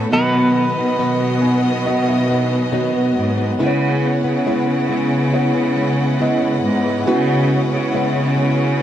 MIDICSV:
0, 0, Header, 1, 7, 480
1, 0, Start_track
1, 0, Tempo, 869565
1, 66, Time_signature, 4, 2, 24, 8
1, 4871, End_track
2, 0, Start_track
2, 0, Title_t, "Violin section"
2, 0, Program_c, 0, 48
2, 63, Note_on_c, 0, 66, 82
2, 65, Note_on_c, 0, 75, 100
2, 66, Note_on_c, 0, 59, 82
2, 1962, Note_off_c, 0, 66, 0
2, 1963, Note_off_c, 0, 75, 0
2, 1964, Note_off_c, 0, 59, 0
2, 1980, Note_on_c, 0, 61, 78
2, 1981, Note_on_c, 0, 71, 82
2, 1982, Note_on_c, 0, 78, 81
2, 4871, Note_off_c, 0, 61, 0
2, 4871, Note_off_c, 0, 71, 0
2, 4871, Note_off_c, 0, 78, 0
2, 4871, End_track
3, 0, Start_track
3, 0, Title_t, "Felt piano"
3, 0, Program_c, 1, 0
3, 0, Control_c, 1, 64, 127
3, 0, Note_on_c, 1, 59, 73
3, 0, Note_on_c, 1, 69, 66
3, 0, Note_on_c, 1, 73, 85
3, 0, Note_on_c, 1, 76, 76
3, 64, Note_off_c, 1, 59, 0
3, 64, Note_on_c, 1, 47, 62
3, 64, Note_on_c, 1, 59, 94
3, 67, Note_on_c, 1, 66, 79
3, 68, Note_on_c, 1, 75, 104
3, 72, Control_c, 1, 64, 0
3, 74, Note_off_c, 1, 69, 0
3, 77, Note_off_c, 1, 73, 0
3, 77, Note_off_c, 1, 76, 0
3, 166, Control_c, 1, 64, 127
3, 521, Note_off_c, 1, 59, 0
3, 522, Note_off_c, 1, 66, 0
3, 523, Note_off_c, 1, 75, 0
3, 541, Note_on_c, 1, 59, 68
3, 544, Note_on_c, 1, 66, 64
3, 544, Note_on_c, 1, 75, 74
3, 763, Note_off_c, 1, 47, 0
3, 783, Note_on_c, 1, 80, 70
3, 999, Note_off_c, 1, 59, 0
3, 1001, Note_off_c, 1, 66, 0
3, 1001, Note_off_c, 1, 75, 0
3, 1007, Note_off_c, 1, 80, 0
3, 1022, Note_on_c, 1, 59, 80
3, 1024, Note_on_c, 1, 78, 67
3, 1025, Note_on_c, 1, 66, 80
3, 1026, Note_on_c, 1, 75, 95
3, 1137, Note_off_c, 1, 78, 0
3, 1150, Note_on_c, 1, 76, 63
3, 1255, Note_off_c, 1, 75, 0
3, 1259, Note_off_c, 1, 76, 0
3, 1264, Note_on_c, 1, 75, 71
3, 1480, Note_off_c, 1, 59, 0
3, 1481, Note_off_c, 1, 66, 0
3, 1488, Note_off_c, 1, 75, 0
3, 1503, Note_on_c, 1, 59, 83
3, 1503, Note_on_c, 1, 73, 70
3, 1505, Note_on_c, 1, 66, 74
3, 1507, Note_on_c, 1, 75, 93
3, 1960, Note_off_c, 1, 59, 0
3, 1961, Note_off_c, 1, 66, 0
3, 1962, Note_off_c, 1, 73, 0
3, 1962, Note_off_c, 1, 75, 0
3, 1982, Note_on_c, 1, 59, 103
3, 1982, Note_on_c, 1, 64, 99
3, 1984, Note_on_c, 1, 49, 76
3, 1987, Note_on_c, 1, 71, 100
3, 1993, Control_c, 1, 64, 0
3, 2022, Note_off_c, 1, 71, 0
3, 2023, Note_on_c, 1, 73, 120
3, 2102, Control_c, 1, 64, 127
3, 2440, Note_off_c, 1, 59, 0
3, 2440, Note_off_c, 1, 64, 0
3, 2457, Note_off_c, 1, 73, 0
3, 2459, Note_on_c, 1, 59, 76
3, 2465, Note_on_c, 1, 64, 76
3, 2465, Note_on_c, 1, 73, 82
3, 2683, Note_off_c, 1, 49, 0
3, 2918, Note_off_c, 1, 59, 0
3, 2921, Note_off_c, 1, 64, 0
3, 2922, Note_off_c, 1, 73, 0
3, 2943, Note_on_c, 1, 59, 88
3, 2945, Note_on_c, 1, 64, 76
3, 2947, Note_on_c, 1, 73, 95
3, 3401, Note_off_c, 1, 59, 0
3, 3401, Note_off_c, 1, 64, 0
3, 3402, Note_off_c, 1, 73, 0
3, 3424, Note_on_c, 1, 59, 82
3, 3429, Note_on_c, 1, 64, 78
3, 3430, Note_on_c, 1, 75, 100
3, 3881, Note_off_c, 1, 59, 0
3, 3883, Note_off_c, 1, 64, 0
3, 3884, Note_off_c, 1, 75, 0
3, 3901, Note_on_c, 1, 59, 115
3, 3904, Note_on_c, 1, 64, 90
3, 3904, Note_on_c, 1, 66, 126
3, 3905, Note_on_c, 1, 49, 70
3, 4359, Note_off_c, 1, 59, 0
3, 4361, Note_off_c, 1, 64, 0
3, 4361, Note_off_c, 1, 66, 0
3, 4383, Note_on_c, 1, 59, 87
3, 4387, Note_on_c, 1, 64, 80
3, 4388, Note_on_c, 1, 73, 92
3, 4603, Note_off_c, 1, 49, 0
3, 4840, Note_off_c, 1, 59, 0
3, 4842, Note_off_c, 1, 64, 0
3, 4843, Note_off_c, 1, 73, 0
3, 4871, End_track
4, 0, Start_track
4, 0, Title_t, "Clean electric guitar"
4, 0, Program_c, 2, 27
4, 0, Note_on_c, 2, 57, 73
4, 0, Note_on_c, 2, 69, 81
4, 56, Note_off_c, 2, 57, 0
4, 69, Note_off_c, 2, 69, 0
4, 4871, End_track
5, 0, Start_track
5, 0, Title_t, "Nylon-string guitar"
5, 0, Program_c, 3, 24
5, 0, Note_on_c, 3, 61, 45
5, 0, Note_on_c, 3, 64, 50
5, 0, Note_on_c, 3, 71, 57
5, 64, Note_on_c, 3, 47, 88
5, 65, Note_off_c, 3, 71, 0
5, 66, Note_on_c, 3, 51, 84
5, 68, Note_off_c, 3, 61, 0
5, 68, Note_on_c, 3, 54, 80
5, 69, Note_off_c, 3, 64, 0
5, 71, Note_on_c, 3, 59, 96
5, 71, Note_on_c, 3, 63, 94
5, 73, Note_on_c, 3, 71, 84
5, 417, Note_off_c, 3, 71, 0
5, 421, Note_off_c, 3, 63, 0
5, 424, Note_off_c, 3, 59, 0
5, 424, Note_on_c, 3, 71, 56
5, 425, Note_off_c, 3, 47, 0
5, 426, Note_off_c, 3, 51, 0
5, 427, Note_off_c, 3, 54, 0
5, 427, Note_on_c, 3, 63, 52
5, 431, Note_on_c, 3, 59, 50
5, 434, Note_on_c, 3, 54, 44
5, 538, Note_off_c, 3, 54, 0
5, 540, Note_off_c, 3, 59, 0
5, 541, Note_off_c, 3, 63, 0
5, 541, Note_on_c, 3, 47, 79
5, 542, Note_off_c, 3, 71, 0
5, 544, Note_on_c, 3, 51, 90
5, 545, Note_on_c, 3, 54, 75
5, 547, Note_on_c, 3, 59, 84
5, 548, Note_on_c, 3, 63, 78
5, 549, Note_on_c, 3, 71, 88
5, 772, Note_off_c, 3, 54, 0
5, 778, Note_off_c, 3, 59, 0
5, 779, Note_on_c, 3, 54, 66
5, 781, Note_off_c, 3, 63, 0
5, 783, Note_off_c, 3, 47, 0
5, 784, Note_on_c, 3, 59, 72
5, 785, Note_off_c, 3, 51, 0
5, 785, Note_off_c, 3, 71, 0
5, 788, Note_on_c, 3, 63, 69
5, 792, Note_on_c, 3, 71, 79
5, 1134, Note_off_c, 3, 71, 0
5, 1139, Note_off_c, 3, 63, 0
5, 1141, Note_on_c, 3, 71, 55
5, 1142, Note_off_c, 3, 54, 0
5, 1143, Note_off_c, 3, 59, 0
5, 1145, Note_on_c, 3, 63, 58
5, 1149, Note_on_c, 3, 59, 56
5, 1153, Note_on_c, 3, 54, 54
5, 1255, Note_off_c, 3, 54, 0
5, 1260, Note_off_c, 3, 59, 0
5, 1262, Note_on_c, 3, 54, 65
5, 1263, Note_off_c, 3, 71, 0
5, 1264, Note_off_c, 3, 63, 0
5, 1267, Note_on_c, 3, 59, 69
5, 1271, Note_on_c, 3, 63, 75
5, 1274, Note_on_c, 3, 71, 70
5, 1498, Note_off_c, 3, 54, 0
5, 1499, Note_off_c, 3, 59, 0
5, 1500, Note_off_c, 3, 63, 0
5, 1501, Note_on_c, 3, 47, 84
5, 1502, Note_off_c, 3, 71, 0
5, 1502, Note_on_c, 3, 51, 83
5, 1505, Note_on_c, 3, 54, 88
5, 1506, Note_on_c, 3, 59, 94
5, 1507, Note_on_c, 3, 63, 85
5, 1508, Note_on_c, 3, 71, 90
5, 1613, Note_off_c, 3, 71, 0
5, 1618, Note_off_c, 3, 63, 0
5, 1619, Note_on_c, 3, 71, 52
5, 1622, Note_off_c, 3, 59, 0
5, 1623, Note_off_c, 3, 47, 0
5, 1624, Note_off_c, 3, 51, 0
5, 1625, Note_off_c, 3, 54, 0
5, 1625, Note_on_c, 3, 63, 53
5, 1628, Note_on_c, 3, 59, 47
5, 1632, Note_on_c, 3, 54, 38
5, 1856, Note_off_c, 3, 71, 0
5, 1860, Note_off_c, 3, 63, 0
5, 1862, Note_on_c, 3, 71, 57
5, 1864, Note_off_c, 3, 59, 0
5, 1867, Note_on_c, 3, 63, 55
5, 1869, Note_off_c, 3, 54, 0
5, 1871, Note_on_c, 3, 59, 51
5, 1875, Note_on_c, 3, 54, 45
5, 1978, Note_off_c, 3, 59, 0
5, 1981, Note_off_c, 3, 54, 0
5, 1981, Note_on_c, 3, 49, 84
5, 1983, Note_off_c, 3, 71, 0
5, 1983, Note_on_c, 3, 56, 89
5, 1985, Note_off_c, 3, 63, 0
5, 1985, Note_on_c, 3, 59, 102
5, 1988, Note_on_c, 3, 64, 96
5, 1989, Note_on_c, 3, 71, 94
5, 2335, Note_off_c, 3, 71, 0
5, 2341, Note_off_c, 3, 64, 0
5, 2342, Note_on_c, 3, 71, 64
5, 2343, Note_off_c, 3, 49, 0
5, 2344, Note_off_c, 3, 56, 0
5, 2345, Note_off_c, 3, 59, 0
5, 2347, Note_on_c, 3, 64, 54
5, 2352, Note_on_c, 3, 59, 47
5, 2460, Note_off_c, 3, 59, 0
5, 2461, Note_on_c, 3, 49, 77
5, 2462, Note_off_c, 3, 64, 0
5, 2463, Note_off_c, 3, 71, 0
5, 2465, Note_on_c, 3, 56, 81
5, 2467, Note_on_c, 3, 59, 96
5, 2469, Note_on_c, 3, 64, 86
5, 2469, Note_on_c, 3, 71, 105
5, 2574, Note_off_c, 3, 71, 0
5, 2580, Note_off_c, 3, 64, 0
5, 2580, Note_on_c, 3, 71, 55
5, 2583, Note_off_c, 3, 49, 0
5, 2585, Note_off_c, 3, 56, 0
5, 2586, Note_off_c, 3, 59, 0
5, 2587, Note_on_c, 3, 64, 50
5, 2592, Note_on_c, 3, 59, 43
5, 2700, Note_off_c, 3, 59, 0
5, 2701, Note_on_c, 3, 56, 65
5, 2703, Note_off_c, 3, 64, 0
5, 2703, Note_off_c, 3, 71, 0
5, 2706, Note_on_c, 3, 59, 66
5, 2710, Note_on_c, 3, 64, 73
5, 2714, Note_on_c, 3, 71, 73
5, 3056, Note_off_c, 3, 71, 0
5, 3063, Note_off_c, 3, 64, 0
5, 3063, Note_on_c, 3, 71, 62
5, 3064, Note_off_c, 3, 56, 0
5, 3066, Note_off_c, 3, 59, 0
5, 3070, Note_on_c, 3, 64, 54
5, 3074, Note_on_c, 3, 59, 49
5, 3178, Note_off_c, 3, 59, 0
5, 3178, Note_on_c, 3, 56, 69
5, 3181, Note_off_c, 3, 64, 0
5, 3184, Note_off_c, 3, 71, 0
5, 3184, Note_on_c, 3, 59, 71
5, 3188, Note_on_c, 3, 64, 73
5, 3192, Note_on_c, 3, 71, 76
5, 3416, Note_off_c, 3, 56, 0
5, 3418, Note_off_c, 3, 59, 0
5, 3420, Note_off_c, 3, 64, 0
5, 3421, Note_on_c, 3, 49, 89
5, 3422, Note_off_c, 3, 71, 0
5, 3423, Note_on_c, 3, 56, 83
5, 3425, Note_on_c, 3, 59, 80
5, 3426, Note_on_c, 3, 64, 100
5, 3429, Note_on_c, 3, 71, 97
5, 3536, Note_off_c, 3, 71, 0
5, 3541, Note_off_c, 3, 64, 0
5, 3543, Note_off_c, 3, 49, 0
5, 3543, Note_on_c, 3, 71, 53
5, 3544, Note_off_c, 3, 56, 0
5, 3545, Note_off_c, 3, 59, 0
5, 3548, Note_on_c, 3, 64, 55
5, 3554, Note_on_c, 3, 59, 42
5, 3775, Note_off_c, 3, 71, 0
5, 3781, Note_on_c, 3, 71, 65
5, 3782, Note_off_c, 3, 64, 0
5, 3787, Note_off_c, 3, 59, 0
5, 3789, Note_on_c, 3, 64, 57
5, 3794, Note_on_c, 3, 59, 52
5, 3901, Note_off_c, 3, 59, 0
5, 3902, Note_off_c, 3, 64, 0
5, 3903, Note_on_c, 3, 49, 84
5, 3904, Note_off_c, 3, 71, 0
5, 3905, Note_on_c, 3, 56, 93
5, 3907, Note_on_c, 3, 59, 95
5, 3908, Note_on_c, 3, 64, 105
5, 3912, Note_on_c, 3, 71, 100
5, 4252, Note_off_c, 3, 71, 0
5, 4259, Note_on_c, 3, 71, 68
5, 4260, Note_off_c, 3, 64, 0
5, 4264, Note_off_c, 3, 49, 0
5, 4265, Note_off_c, 3, 56, 0
5, 4265, Note_off_c, 3, 59, 0
5, 4267, Note_on_c, 3, 64, 52
5, 4272, Note_on_c, 3, 59, 51
5, 4375, Note_off_c, 3, 59, 0
5, 4378, Note_off_c, 3, 64, 0
5, 4379, Note_on_c, 3, 49, 87
5, 4380, Note_off_c, 3, 71, 0
5, 4381, Note_on_c, 3, 56, 93
5, 4382, Note_on_c, 3, 59, 88
5, 4385, Note_on_c, 3, 64, 97
5, 4386, Note_on_c, 3, 71, 94
5, 4610, Note_off_c, 3, 56, 0
5, 4615, Note_off_c, 3, 59, 0
5, 4617, Note_on_c, 3, 56, 65
5, 4620, Note_off_c, 3, 64, 0
5, 4622, Note_off_c, 3, 49, 0
5, 4622, Note_on_c, 3, 59, 68
5, 4623, Note_off_c, 3, 71, 0
5, 4626, Note_on_c, 3, 64, 67
5, 4629, Note_on_c, 3, 71, 79
5, 4871, Note_off_c, 3, 56, 0
5, 4871, Note_off_c, 3, 59, 0
5, 4871, Note_off_c, 3, 64, 0
5, 4871, Note_off_c, 3, 71, 0
5, 4871, End_track
6, 0, Start_track
6, 0, Title_t, "String section"
6, 0, Program_c, 4, 48
6, 0, Note_on_c, 4, 59, 82
6, 67, Note_on_c, 4, 54, 68
6, 68, Note_on_c, 4, 51, 67
6, 1967, Note_off_c, 4, 54, 0
6, 1968, Note_off_c, 4, 51, 0
6, 1986, Note_on_c, 4, 49, 77
6, 1986, Note_on_c, 4, 56, 60
6, 1987, Note_on_c, 4, 64, 74
6, 3883, Note_off_c, 4, 59, 0
6, 3899, Note_on_c, 4, 61, 89
6, 4871, Note_off_c, 4, 49, 0
6, 4871, Note_off_c, 4, 56, 0
6, 4871, Note_off_c, 4, 61, 0
6, 4871, Note_off_c, 4, 64, 0
6, 4871, End_track
7, 0, Start_track
7, 0, Title_t, "Cello section"
7, 0, Program_c, 5, 48
7, 63, Note_on_c, 5, 47, 111
7, 403, Note_off_c, 5, 47, 0
7, 426, Note_on_c, 5, 47, 100
7, 1724, Note_off_c, 5, 47, 0
7, 1746, Note_on_c, 5, 44, 84
7, 1969, Note_off_c, 5, 44, 0
7, 1986, Note_on_c, 5, 49, 99
7, 2324, Note_off_c, 5, 49, 0
7, 2348, Note_on_c, 5, 49, 93
7, 3645, Note_off_c, 5, 49, 0
7, 3666, Note_on_c, 5, 44, 89
7, 3889, Note_off_c, 5, 44, 0
7, 3907, Note_on_c, 5, 49, 114
7, 4244, Note_off_c, 5, 49, 0
7, 4265, Note_on_c, 5, 49, 101
7, 4871, Note_off_c, 5, 49, 0
7, 4871, End_track
0, 0, End_of_file